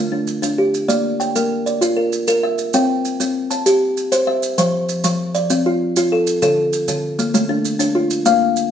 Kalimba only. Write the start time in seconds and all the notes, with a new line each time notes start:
Already playing: A3 F4
0.12 D4
0.42 D4
0.58 G4
0.88 A#3 D5
1.20 G5
1.36 A#3 A#4
1.66 D5
1.81 F4
1.97 A#4
2.28 A#4
2.43 E5
2.74 C4 G5
3.20 C4
3.51 A5
3.66 G4
4.12 C5
4.27 E5
4.58 F3 C5
5.04 F3
5.35 D5
5.50 C4
5.66 F4
5.97 F4
6.12 A4
6.42 D3 A4
6.88 D3
7.19 A#3
7.34 A3
7.49 D4
7.79 D4
7.95 F4
8.26 A#3 F5